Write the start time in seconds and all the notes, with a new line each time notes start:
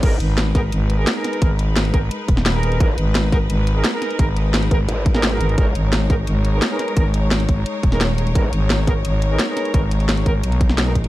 0.03 G#1 G#3 B3 D#4 G#4 A#4 B4, kick, closed hi-hat, crash
0.20 G#1, closed hi-hat
0.38 snare, closed hi-hat
0.55 B3 D#4 G#4 A#4, kick, snare, closed hi-hat
0.72 G#1, closed hi-hat
0.90 closed hi-hat
0.98 B3 D#4 G#4 A#4
1.07 snare, closed hi-hat
1.16 B3 D#4 G#4 A#4
1.24 snare, closed hi-hat
1.33 closed hi-hat
1.42 G#1 B3 D#4 G#4 A#4, kick, closed hi-hat
1.59 closed hi-hat
1.76 snare, closed hi-hat
1.85 closed hi-hat
1.94 G#1 B3 D#4 G#4 A#4, kick, closed hi-hat
2.11 closed hi-hat
2.28 D#1, kick, closed hi-hat
2.37 snare
2.46 snare, closed hi-hat
2.54 B3 D#4 G#4 A#4
2.63 closed hi-hat
2.72 closed hi-hat
2.80 G#1 B3 D#4 G#4 A#4, kick, closed hi-hat
2.98 G#1, closed hi-hat
3.15 snare, closed hi-hat
3.32 B3 D#4 G#4 A#4, kick, snare, closed hi-hat
3.50 G#1, closed hi-hat
3.67 closed hi-hat
3.76 B3 D#4 G#4 A#4
3.84 snare, closed hi-hat
3.93 B3 D#4 G#4 A#4
4.02 snare, closed hi-hat
4.11 closed hi-hat
4.19 G#1 B3 D#4 G#4 A#4, kick, closed hi-hat
4.37 closed hi-hat
4.54 snare, closed hi-hat
4.63 closed hi-hat
4.71 G#1 B3 D#4 G#4 A#4, kick, closed hi-hat
4.88 G#1, closed hi-hat
5.06 kick, closed hi-hat
5.15 B3 D#4 G#4 A#4, snare
5.23 snare, closed hi-hat
5.32 B3 D#4 G#4 A#4
5.41 G#1, closed hi-hat
5.49 closed hi-hat
5.58 G#1 B3 D#4 G#4 A#4 C#5, kick, closed hi-hat
5.75 G#1, closed hi-hat
5.93 snare, closed hi-hat
6.10 B3 D#4 G#4 A#4, kick, snare, closed hi-hat
6.27 G#1, closed hi-hat
6.45 closed hi-hat
6.53 B3 D#4 G#4 A#4
6.62 snare, closed hi-hat
6.71 B3 D#4 G#4 A#4
6.79 snare, closed hi-hat
6.88 closed hi-hat
6.97 G#1 B3 D#4 G#4 A#4, kick, closed hi-hat
7.14 closed hi-hat
7.31 snare, closed hi-hat
7.40 closed hi-hat
7.49 G#1, kick, closed hi-hat
7.66 closed hi-hat
7.83 D#1, kick, closed hi-hat
7.92 B3 D#4 G#4 A#4, snare
8.01 snare, closed hi-hat
8.18 closed hi-hat
8.27 closed hi-hat
8.35 G#1 B3 D#4 G#4 A#4, kick, closed hi-hat
8.53 G#1, closed hi-hat
8.70 snare, closed hi-hat
8.87 B3 D#4 G#4 A#4, kick, snare, closed hi-hat
9.05 G#1, closed hi-hat
9.22 closed hi-hat
9.31 B3 D#4 G#4 A#4
9.39 snare, closed hi-hat
9.48 B3 D#4 G#4 A#4
9.57 snare, closed hi-hat
9.65 closed hi-hat
9.74 G#1 B3 D#4 G#4 A#4, kick, closed hi-hat
9.91 closed hi-hat
10.00 closed hi-hat
10.09 snare, closed hi-hat
10.18 closed hi-hat
10.26 G#1 B3 D#4 G#4 A#4, kick, closed hi-hat
10.44 B1, closed hi-hat
10.52 closed hi-hat
10.61 kick, closed hi-hat
10.70 snare
10.78 snare, closed hi-hat
10.87 B3 D#4 G#4 A#4
10.92 A#1, kick, closed hi-hat
11.04 closed hi-hat